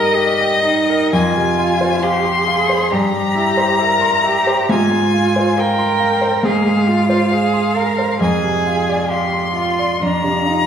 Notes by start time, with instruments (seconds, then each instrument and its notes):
Already playing: grand piano G2 G3 D#4 A#4 D#5 G5, cello A#4, violin D#5
0.16 cello G4, grand piano D#5
0.41 grand piano G5
0.64 cello D#4, grand piano D#5
0.90 grand piano A#4
1.13 grand piano F2, cello F4, violin G#5
1.37 grand piano C3
1.58 grand piano F4
1.81 grand piano C5
2.02 cello G4, grand piano F5, violin C6
2.25 grand piano C6
2.47 cello G#4, grand piano F5
2.69 grand piano C5
2.90 grand piano G2, cello G4, violin A#5
3.13 grand piano G3
3.35 grand piano E4
3.57 grand piano C5
3.79 cello A#4, grand piano E5
4.01 grand piano C6
4.24 cello G4, grand piano E5
4.47 grand piano C5
4.69 grand piano G#2, cello F4, violin G#5
4.92 grand piano G#3
5.14 grand piano F4
5.36 grand piano C5
5.58 cello A#4, grand piano F5, violin G5
5.78 grand piano C6
6.00 grand piano F5
6.21 grand piano C5
6.43 grand piano G#2, cello G#4, violin F5
6.65 grand piano G#3
6.88 grand piano F4, cello F4
7.10 grand piano C5
7.31 cello G#4, grand piano F5
7.53 grand piano C6
7.76 cello A#4, grand piano F5
7.98 grand piano C5
8.21 grand piano F2, cello G#4, violin G#5
8.43 grand piano C3
8.67 grand piano F4
8.90 grand piano D5
9.10 cello G4, grand piano F5, violin C6
9.34 grand piano C6
9.55 cello F4, grand piano F5
9.79 grand piano D5
10.01 grand piano F2, cello D4, violin A#5
10.24 grand piano C3
10.46 cello D#4, grand piano F4